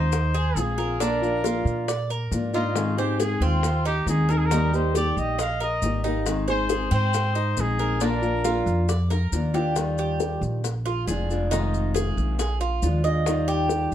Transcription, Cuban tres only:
0.00 0.33 D#4 medium
0.34 0.77 G#4 medium
0.78 0.99 A#4 medium
1.00 1.43 D4 medium
1.44 1.87 F4 medium
1.88 2.09 D5 medium
2.10 2.53 A#4 medium
2.54 2.97 D#4 medium
2.98 3.19 C5 medium
3.20 3.41 G#4 medium
3.42 3.84 C4 medium
3.85 4.28 D#4 medium
4.29 4.50 A#4 medium
4.51 4.94 D#4 medium
4.95 5.37 G4 medium
5.38 5.60 D#5 medium
5.60 6.03 A#4 medium
6.04 6.47 D#4 medium
6.48 6.69 C5 medium
6.69 6.91 G#4 medium
6.91 7.34 C4 medium
7.35 7.78 D#4 medium
7.79 8.01 A#4 medium
8.01 8.44 D4 medium
8.44 8.87 F4 medium
8.89 9.10 D5 medium
9.10 9.53 A#4 medium
9.54 9.76 G4 medium
9.99 10.41 G4 medium
10.86 11.07 F4 medium
11.07 11.50 G#4 medium
11.51 11.94 D#4 medium
11.94 12.37 G#4 medium
12.39 12.60 G#4 medium
12.61 13.03 F4 medium
13.04 13.47 D#5 medium
13.48 13.90 G4 medium

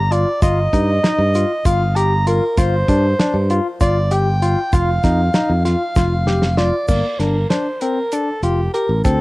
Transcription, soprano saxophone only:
0.00 0.14 A#5 medium
0.12 0.43 D5 medium
0.43 1.62 D#5 loud
1.66 1.98 F5 loud
1.96 2.27 A#5 medium
2.28 2.60 A#4 medium
2.58 3.54 C5 loud
3.82 4.14 D5 medium
4.13 4.76 G5 loud
4.75 5.65 F5 loud
5.65 6.59 F5 loud
6.58 6.87 D5 medium
6.88 7.21 D5 medium
7.20 7.50 A#4 medium
7.50 7.83 C5 medium
7.82 8.15 A#4 medium
8.13 8.43 A4 medium
8.44 8.72 G4 medium
8.74 9.02 A#4 medium
9.05 9.21 A4 medium

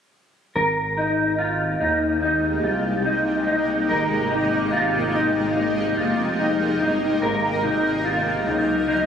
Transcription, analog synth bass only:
0.55 1.77 G#1 medium
1.81 2.60 D#2 medium
2.64 3.91 C2 medium
3.89 4.48 G#1 loud
4.51 5.93 G#1 medium
5.97 6.77 F1 medium
6.81 7.20 G1 medium
7.23 8.43 G#1 loud
8.47 9.06 C#2 medium

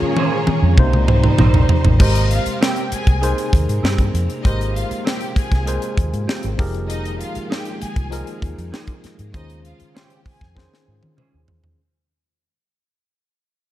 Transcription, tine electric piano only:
0.00 0.53 D#3 medium
0.00 0.53 C#4 medium
0.00 0.53 F4 medium
0.00 0.57 G#4 medium
0.00 0.54 C#5 medium
0.78 1.75 C3 loud
0.78 1.76 A#3 loud
0.78 1.76 D#4 medium
0.78 1.76 C5 loud
1.99 2.97 G#3 medium
1.99 2.98 G4 medium
1.99 2.98 A#4 medium
1.99 2.98 C5 loud
3.21 4.20 D#4 medium
3.21 4.20 G#4 loud
3.21 4.20 A#4 medium
3.21 4.21 C5 loud
4.44 5.42 G#3 medium
4.44 5.42 G4 medium
4.44 5.43 A#4 medium
4.44 5.43 C5 loud
5.66 6.58 G#3 loud
5.66 6.58 G#4 medium
5.66 6.59 A#4 medium
5.66 6.59 C5 loud
6.58 7.56 F3 medium
6.58 7.56 D#4 medium
6.58 7.57 G4 medium
6.58 7.57 G#4 medium
6.58 7.57 A#4 loud
8.11 9.09 F3 medium
8.11 9.09 D#4 medium
8.11 9.09 F4 medium
8.11 9.10 G#4 medium
8.11 9.10 A#4 loud
9.33 10.31 D#3 medium
9.33 10.32 C#4 medium
9.33 10.32 F4 medium
9.33 10.32 G#4 medium
9.33 10.32 C5 loud
10.55 11.54 D#3 loud
10.55 11.54 C#4 medium
10.55 11.54 F4 medium
10.55 11.55 G#4 medium
10.55 11.55 C5 loud

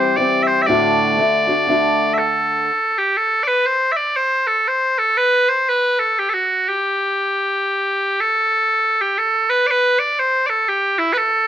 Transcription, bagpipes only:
0.00 0.16 C5 medium
0.16 0.43 D5 medium
0.43 0.47 E5 medium
0.47 0.62 C5 medium
0.62 0.66 E5 medium
0.66 2.14 D5 medium
2.14 2.18 E5 medium
2.18 2.98 A4 medium
2.98 3.17 G4 medium
3.17 3.43 A4 medium
3.43 3.48 D5 medium
3.48 3.66 B4 medium
3.66 3.92 C5 medium
3.92 3.96 E5 medium
3.96 4.16 D5 medium
4.16 4.47 C5 loud
4.47 4.68 A4 medium
4.68 4.98 C5 medium
4.98 5.17 A4 medium
5.17 5.49 B4 loud
5.49 5.69 C5 medium
5.69 5.99 B4 medium
5.99 6.19 A4 medium
6.19 6.29 G4 medium
6.29 6.34 A4 medium
6.34 6.69 F#4 medium
6.69 8.20 G4 medium
8.20 9.01 A4 medium
9.01 9.18 G4 medium
9.18 9.50 A4 medium
9.50 9.67 B4 medium
9.67 9.99 B4 medium
9.67 9.71 D5 medium
9.99 10.19 D5 medium
10.19 10.46 C5 loud
10.46 10.69 A4 medium
10.46 10.50 D5 medium
10.69 10.99 G4 medium
10.99 11.13 E4 medium
11.13 11.17 B4 medium
11.17 11.47 A4 medium

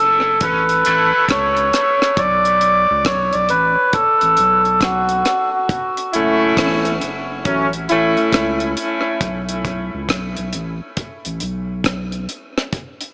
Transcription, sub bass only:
0.00 0.40 F#1 medium
0.42 0.83 A1 medium
0.87 1.12 A1 medium
1.29 1.71 C#2 medium
2.18 2.86 B1 loud
2.90 3.05 C#2 medium
3.06 3.32 B1 loud
3.34 3.49 B1 medium
3.51 3.76 A1 loud
4.22 4.37 A1 medium
4.39 4.80 B1 medium
4.81 5.23 B1 medium
6.15 6.56 F#1 loud
6.58 7.00 A1 medium
7.03 7.44 F#1 medium
7.46 7.88 A1 medium
7.91 8.17 A1 loud
8.33 8.75 C#2 medium
9.21 9.90 B1 loud
9.94 10.09 C#2 medium
10.10 10.36 B1 medium
10.38 10.53 B1 medium
10.55 10.80 A1 medium
11.26 11.41 A1 medium
11.42 11.84 B1 loud
11.85 12.27 B1 loud

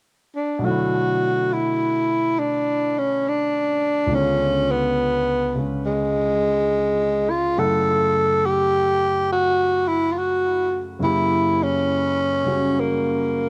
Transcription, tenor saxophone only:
0.35 0.67 D4 medium
0.65 1.55 F#4 medium
1.53 2.41 E4 medium
2.39 3.00 D4 medium
2.98 3.30 C#4 medium
3.29 4.16 D4 medium
4.14 4.73 C#4 medium
4.71 5.67 B3 medium
5.86 7.32 G#3 medium
7.30 7.61 F4 medium
7.59 8.47 A4 medium
8.46 9.30 G4 medium
9.32 9.89 F#4 medium
9.88 10.13 E4 medium
10.12 10.20 F4 soft
10.18 10.85 F#4 medium
11.04 11.64 E4 medium
11.63 12.81 C#4 medium
12.80 13.49 A#3 medium

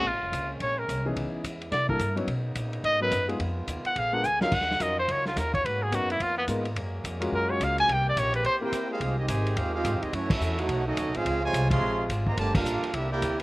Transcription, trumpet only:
0.07 0.51 F4 medium
0.62 0.80 C#5 loud
0.79 1.06 A#4 medium
1.72 1.88 D5 loud
1.89 2.15 A#4 medium
2.85 3.00 D#5 loud
3.02 3.28 B4 loud
3.86 4.00 F#5 loud
3.99 4.15 F5 loud
4.14 4.26 F#5 loud
4.25 4.41 G#5 loud
4.42 4.55 F5 loud
4.54 4.83 F#5 loud
4.82 4.98 D#5 loud
4.99 5.13 C5 medium
5.11 5.26 C#5 medium
5.27 5.40 F4 medium
5.38 5.54 A#4 medium
5.54 5.67 C#5 loud
5.65 5.84 B4 medium
5.82 5.96 G#4 medium
5.95 6.11 F#4 loud
6.11 6.24 E4 medium
6.22 6.37 F4 loud
6.38 6.44 B3 medium
7.35 7.52 A#4 medium
7.51 7.65 C#5 medium
7.63 7.79 F5 medium
7.80 7.94 G#5 loud
7.92 8.08 G5 loud
8.09 8.20 D5 loud
8.19 8.35 C#5 loud
8.35 8.45 B4 medium
8.46 8.56 C5 loud

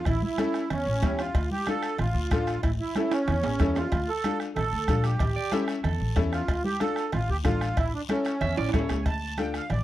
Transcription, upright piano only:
0.38 0.61 C#4 medium
0.38 0.61 E4 medium
0.38 0.61 A4 medium
1.03 1.25 C#4 medium
1.03 1.25 E4 medium
1.03 1.26 G4 medium
1.67 1.90 D4 medium
1.67 1.90 F4 medium
1.67 1.90 A4 medium
2.31 2.54 D4 medium
2.31 2.54 F4 medium
2.31 2.54 A4 medium
2.96 3.18 C#4 medium
2.96 3.18 E4 medium
2.96 3.19 A4 medium
3.60 3.82 C#4 medium
3.60 3.82 E4 medium
3.60 3.83 A4 medium
4.24 4.47 D4 medium
4.24 4.47 F4 medium
4.24 4.47 A4 medium
4.89 5.11 D4 medium
4.89 5.11 F4 medium
4.89 5.11 A4 medium
5.52 5.75 C#4 medium
5.52 5.75 E4 medium
5.52 5.75 A4 medium
6.16 6.39 C#4 medium
6.16 6.39 E4 medium
6.16 6.39 A4 medium
6.80 7.03 D4 medium
6.80 7.03 F4 medium
6.80 7.03 A4 medium
7.44 7.67 D4 medium
7.44 7.67 F4 medium
7.44 7.67 A4 medium
8.09 8.32 C#4 medium
8.09 8.32 E4 medium
8.09 8.32 A4 medium
8.73 8.96 C#4 medium
8.73 8.96 E4 medium
8.73 8.96 A4 medium
9.38 9.60 D4 medium
9.38 9.60 F4 medium
9.38 9.61 A4 medium

